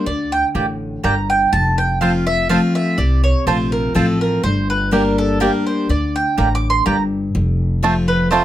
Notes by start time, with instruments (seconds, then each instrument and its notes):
0.06 upright bass D2, steel-string acoustic guitar D3, mandolin D5
0.32 mandolin G5
0.55 upright bass A1, steel-string acoustic guitar A2, mandolin A#3 G4 D5 G5
1.04 upright bass G1, steel-string acoustic guitar G2, mandolin A#3 G4 D5 G5 A#5
1.30 mandolin G5
1.53 upright bass F1, steel-string acoustic guitar F2, mandolin A5
1.78 mandolin G5
2.01 steel-string acoustic guitar F3 A3 C4 F4, mandolin C4 F4 C5 F5 A5
2.26 steel-string acoustic guitar F4, mandolin E5
2.49 steel-string acoustic guitar F3 A3 C4 F4, mandolin C4 F4 C5 F5 A5
2.75 mandolin E5
2.98 upright bass C2, steel-string acoustic guitar C3, mandolin D5
3.24 mandolin C#5
3.47 upright bass A#1, steel-string acoustic guitar F3 A3 C4 F4, mandolin C4 F4 C5 A5
3.72 mandolin A#4
3.95 upright bass A1, steel-string acoustic guitar F3 A3 C4 F4, mandolin C4 F4 A4 C5 A5
4.21 mandolin A#4
4.43 upright bass G1, steel-string acoustic guitar G2, mandolin C5
4.70 mandolin B4
4.91 steel-string acoustic guitar G3 A#3 D4 G4, mandolin A#3 G4 A#4 D5 G5
5.18 mandolin A4
5.40 steel-string acoustic guitar G3 A#3 D4 G4, mandolin A#3 G4 A#4 D5 G5
5.67 mandolin C5
5.89 upright bass D2, steel-string acoustic guitar D3, mandolin D5
6.16 mandolin G5
6.37 upright bass A1, steel-string acoustic guitar A2, mandolin A#3 G4 D5 G5 A#5
6.55 mandolin D6
6.70 mandolin C6
6.86 upright bass G1, steel-string acoustic guitar G2, mandolin A#3 G4 D5 G5 A#5
7.35 upright bass F1, steel-string acoustic guitar F2
7.83 steel-string acoustic guitar F3 A3 C4 F4, five-string banjo A3 C4 F4, mandolin C4 F4 C5 A5
8.08 mandolin B4
8.31 steel-string acoustic guitar F3 A3 C4 F4, five-string banjo A3 C4 F4, mandolin C4 F4 C5 A5